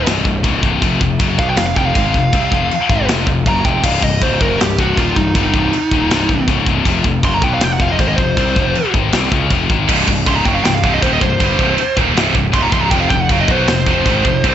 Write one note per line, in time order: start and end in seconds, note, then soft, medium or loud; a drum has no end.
0.06 0.24 C1 medium
0.06 0.23 C2 medium
0.06 0.24 G2 medium
0.06 0.25 C3 loud
0.06 snare loud
0.06 china medium
0.24 0.43 C1 medium
0.24 0.40 C2 medium
0.24 0.40 G2 medium
0.24 kick medium
0.43 0.62 C#1 medium
0.43 0.62 C#2 medium
0.43 0.63 G#2 loud
0.43 0.63 C#3 loud
0.43 kick loud
0.43 china medium
0.62 0.81 C1 loud
0.62 0.81 C2 medium
0.62 0.81 G2 medium
0.62 0.81 C3 loud
0.62 kick loud
0.81 1.00 F1 medium
0.81 0.99 F2 medium
0.81 0.99 C3 medium
0.81 1.00 F3 loud
0.81 kick loud
0.81 china medium
1.00 1.19 F1 medium
1.00 1.15 F2 medium
1.00 1.16 C3 medium
1.00 kick medium
1.19 1.37 F#1 loud
1.19 1.38 F#2 medium
1.19 1.38 C#3 medium
1.19 1.38 F#3 loud
1.19 kick loud
1.19 china medium
1.38 1.56 B1 medium
1.38 1.57 B2 medium
1.38 1.57 F#3 medium
1.38 1.58 B3 loud
1.38 1.49 F5 medium
1.38 kick loud
1.49 1.56 G5 medium
1.56 1.75 F1 medium
1.56 1.72 F2 medium
1.56 1.73 C3 medium
1.56 1.66 F5 medium
1.56 snare loud
1.56 china medium
1.67 1.77 F5 medium
1.76 1.94 F1 medium
1.76 1.94 F2 medium
1.76 1.94 C3 medium
1.76 1.94 F3 medium
1.76 1.85 G5 medium
1.76 kick medium
1.86 1.95 F5 medium
1.94 2.13 G#1 medium
1.94 2.13 G#2 medium
1.94 2.13 D#3 medium
1.94 2.14 G#3 loud
1.94 3.05 F5 medium
1.94 kick loud
1.94 china medium
2.14 2.32 F1 medium
2.14 2.29 F2 medium
2.14 2.29 C3 medium
2.14 kick medium
2.32 2.51 C2 medium
2.32 2.51 C3 loud
2.32 2.51 G3 medium
2.32 2.51 C4 loud
2.32 kick loud
2.32 china medium
2.52 2.69 F1 medium
2.52 2.70 F2 medium
2.52 2.71 C3 loud
2.52 2.71 F3 loud
2.52 kick loud
2.71 china medium
2.90 3.07 G#1 medium
2.90 3.08 G#2 medium
2.90 3.08 D#3 medium
2.90 3.08 G#3 loud
2.90 kick loud
3.08 3.26 F1 medium
3.08 3.27 F2 medium
3.08 3.27 C3 loud
3.08 3.27 F3 medium
3.08 snare loud
3.08 china medium
3.27 3.44 F1 medium
3.27 3.43 F2 medium
3.27 3.43 C3 medium
3.27 kick medium
3.46 3.64 F#1 loud
3.46 3.65 F#2 medium
3.46 3.65 C#3 loud
3.46 3.65 F#3 loud
3.46 3.65 A#5 medium
3.46 kick loud
3.46 china medium
3.65 3.82 F1 medium
3.65 3.83 F2 medium
3.65 3.84 C3 medium
3.65 3.84 F3 loud
3.65 3.83 G5 medium
3.65 kick loud
3.83 4.01 C1 medium
3.83 4.02 C2 loud
3.83 4.02 G2 loud
3.83 4.02 C3 loud
3.83 4.03 F5 medium
3.83 kick loud
3.83 crash loud
3.83 china medium
4.02 4.20 C1 medium
4.02 4.18 C2 medium
4.02 4.18 G2 medium
4.02 4.23 D#5 medium
4.02 kick medium
4.22 4.39 C#1 medium
4.22 4.40 C#2 medium
4.22 4.40 G#2 loud
4.22 4.40 C#3 loud
4.22 4.40 C5 medium
4.22 kick loud
4.22 china medium
4.41 4.58 F#1 medium
4.41 4.59 F#2 medium
4.41 4.59 C#3 medium
4.41 4.59 F#3 loud
4.41 4.59 A#4 medium
4.41 kick loud
4.60 4.78 C1 medium
4.60 4.75 C2 medium
4.60 4.75 G2 medium
4.60 4.78 G4 loud
4.60 snare loud
4.60 china medium
4.78 4.96 C1 medium
4.78 4.97 C2 medium
4.78 4.97 G2 medium
4.78 4.97 C3 loud
4.78 4.97 F#4 medium
4.78 kick loud
4.97 5.15 D#1 medium
4.97 5.16 D#2 medium
4.97 5.16 A#2 loud
4.97 5.16 D#3 medium
4.97 5.16 F4 medium
4.97 kick loud
4.97 china medium
5.16 5.34 C1 medium
5.16 5.31 C2 medium
5.16 5.32 G2 medium
5.16 5.34 D#4 medium
5.16 kick medium
5.35 5.53 G1 medium
5.35 5.54 G2 medium
5.35 5.54 D3 loud
5.35 5.54 G3 loud
5.35 6.45 D#4 loud
5.35 kick loud
5.35 china medium
5.54 5.71 C1 loud
5.54 5.72 C2 medium
5.54 5.73 G2 loud
5.54 5.73 C3 medium
5.54 kick loud
5.73 china medium
5.91 6.09 D#1 medium
5.91 6.10 D#2 loud
5.91 6.10 A#2 medium
5.91 6.11 D#3 loud
5.91 kick loud
6.10 6.29 C1 medium
6.10 6.29 C2 loud
6.10 6.29 G2 medium
6.10 6.29 C3 loud
6.10 snare loud
6.10 china medium
6.29 6.47 C1 medium
6.29 6.45 C2 medium
6.29 6.45 G2 medium
6.29 kick medium
6.48 6.66 C#1 loud
6.48 6.66 C#2 loud
6.48 6.67 G#2 loud
6.48 6.67 C#3 loud
6.48 kick loud
6.48 china medium
6.66 6.84 C1 medium
6.66 6.86 C2 medium
6.66 6.86 G2 loud
6.66 6.86 C3 loud
6.66 kick loud
6.85 7.03 F1 medium
6.85 7.04 F2 loud
6.85 7.05 C3 loud
6.85 7.05 F3 loud
6.85 kick loud
6.85 china medium
7.04 7.22 F1 medium
7.04 7.20 F2 medium
7.04 7.20 C3 medium
7.04 kick medium
7.23 7.41 F#1 medium
7.23 7.42 F#2 medium
7.23 7.42 C#3 medium
7.23 7.43 F#3 loud
7.23 7.34 C6 loud
7.23 kick loud
7.23 china medium
7.34 7.43 A#5 medium
7.42 7.60 B1 loud
7.42 7.61 B2 medium
7.42 7.61 F#3 loud
7.42 7.61 B3 loud
7.42 7.52 G5 medium
7.42 kick loud
7.54 7.64 F5 medium
7.61 7.79 F1 medium
7.61 7.76 F2 medium
7.61 7.76 C3 medium
7.61 7.72 G5 loud
7.61 snare loud
7.61 china medium
7.73 7.81 F#5 medium
7.80 7.98 F1 medium
7.80 7.98 F2 medium
7.80 7.99 C3 loud
7.80 7.99 F3 loud
7.80 7.90 F5 medium
7.80 kick loud
7.92 8.00 D#5 loud
7.99 8.17 G#1 loud
7.99 8.18 G#2 medium
7.99 8.18 D#3 loud
7.99 8.18 G#3 loud
7.99 8.08 C5 medium
7.99 kick loud
7.99 china medium
8.08 8.16 D#5 medium
8.16 8.36 F1 medium
8.16 8.33 F2 medium
8.16 8.33 C3 medium
8.16 8.90 C5 loud
8.16 kick medium
8.37 8.55 C2 medium
8.37 8.55 C3 loud
8.37 8.56 G3 loud
8.37 8.56 C4 loud
8.37 kick loud
8.37 china medium
8.56 8.74 F1 loud
8.56 8.74 F2 medium
8.56 8.74 C3 loud
8.56 8.75 F3 medium
8.56 kick loud
8.75 china medium
8.94 9.12 G#1 medium
8.94 9.12 G#2 medium
8.94 9.13 D#3 medium
8.94 9.13 G#3 loud
8.94 kick loud
9.12 9.31 C2 medium
9.12 9.31 C3 medium
9.12 9.32 G3 medium
9.12 9.32 C4 loud
9.12 snare loud
9.12 china medium
9.32 9.49 C#2 medium
9.32 9.51 C#3 medium
9.32 9.51 G#3 medium
9.32 9.51 C#4 medium
9.32 kick medium
9.51 9.68 F1 medium
9.51 9.69 F2 medium
9.51 9.70 C3 loud
9.51 9.70 F3 loud
9.51 kick loud
9.51 china medium
9.70 9.87 G#1 loud
9.70 9.88 G#2 medium
9.70 9.89 D#3 medium
9.70 9.89 G#3 loud
9.70 kick loud
9.88 10.06 C1 medium
9.88 10.06 C2 medium
9.88 10.07 G2 loud
9.88 10.07 C3 loud
9.88 kick loud
9.88 crash loud
9.88 china medium
10.07 10.25 C1 medium
10.07 10.23 C2 medium
10.07 10.23 G2 medium
10.07 kick medium
10.26 10.44 C#1 medium
10.26 10.45 C#2 medium
10.26 10.45 G#2 medium
10.26 10.45 C#3 loud
10.26 10.36 C6 loud
10.26 kick loud
10.26 china medium
10.36 10.45 A#5 medium
10.45 10.63 F#1 medium
10.45 10.64 F#2 medium
10.45 10.65 C#3 medium
10.45 10.64 F#3 medium
10.45 10.54 G5 medium
10.45 kick loud
10.55 10.64 F5 medium
10.64 10.82 C1 medium
10.64 10.80 C2 medium
10.64 10.81 G2 medium
10.64 10.74 G5 medium
10.64 snare loud
10.64 china medium
10.74 10.83 F5 medium
10.84 11.01 C1 medium
10.84 11.02 C2 medium
10.84 11.03 G2 medium
10.84 11.03 C3 loud
10.84 10.93 F5 loud
10.84 kick loud
10.94 11.02 D#5 loud
11.02 11.20 D#1 loud
11.02 11.21 D#2 loud
11.02 11.22 A#2 medium
11.02 11.22 D#3 loud
11.02 11.13 C5 loud
11.02 kick loud
11.02 china medium
11.13 11.21 D#5 medium
11.21 11.39 C1 medium
11.21 11.37 C2 medium
11.21 11.37 G2 medium
11.21 11.95 C5 loud
11.21 kick medium
11.40 11.58 G1 medium
11.40 11.58 G2 loud
11.40 11.59 D3 loud
11.40 11.59 G3 loud
11.40 kick loud
11.40 china medium
11.58 11.77 C1 medium
11.58 11.77 C2 medium
11.58 11.78 G2 loud
11.58 11.78 C3 loud
11.58 kick loud
11.78 china medium
11.97 12.15 D#1 medium
11.97 12.15 D#2 medium
11.97 12.15 A#2 loud
11.97 12.16 D#3 medium
11.97 kick loud
12.15 12.33 C1 medium
12.15 12.34 C2 loud
12.15 12.34 G2 loud
12.15 12.35 C3 loud
12.15 snare loud
12.15 china medium
12.35 12.53 C1 medium
12.35 12.50 C2 medium
12.35 12.50 G2 medium
12.35 kick medium
12.52 12.71 C#1 loud
12.52 12.71 C#2 medium
12.52 12.71 G#2 loud
12.52 12.72 C#3 loud
12.52 12.63 C6 loud
12.52 kick loud
12.52 china medium
12.63 12.72 A#5 medium
12.71 12.90 C1 loud
12.71 12.91 C2 loud
12.71 12.91 G2 loud
12.71 12.90 C3 loud
12.71 12.81 C6 loud
12.71 kick loud
12.82 12.91 A#5 medium
12.91 13.10 F1 medium
12.91 13.10 F2 loud
12.91 13.10 C3 loud
12.91 13.10 F3 loud
12.91 13.01 G5 loud
12.91 kick loud
12.91 china medium
13.00 13.09 F5 loud
13.10 13.29 F1 medium
13.10 13.26 F2 medium
13.10 13.27 C3 medium
13.10 13.20 G5 loud
13.10 kick medium
13.20 13.31 F#5 loud
13.29 13.47 F#1 medium
13.29 13.48 F#2 medium
13.29 13.48 C#3 loud
13.29 13.49 F#3 loud
13.29 13.40 F5 loud
13.29 kick loud
13.29 china medium
13.41 13.51 D#5 loud
13.48 13.66 B1 loud
13.48 13.68 B2 medium
13.48 13.68 F#3 loud
13.48 13.69 B3 loud
13.48 13.68 C5 medium
13.48 kick loud
13.67 13.86 F1 medium
13.67 13.83 F2 medium
13.67 13.84 C3 medium
13.67 14.55 C5 loud
13.67 snare loud
13.67 china medium
13.86 14.05 F1 medium
13.86 14.05 F2 medium
13.86 14.06 C3 medium
13.86 14.06 F3 loud
13.86 kick loud
14.06 14.24 G#1 loud
14.06 14.24 G#2 loud
14.06 14.25 D#3 loud
14.06 14.25 G#3 loud
14.06 kick loud
14.06 china medium
14.25 14.43 F1 medium
14.25 14.41 F2 medium
14.25 14.41 C3 medium
14.25 kick medium
14.44 14.55 C2 medium
14.44 14.55 C3 loud
14.44 14.55 G3 loud
14.44 14.55 C4 loud
14.44 kick loud
14.44 china medium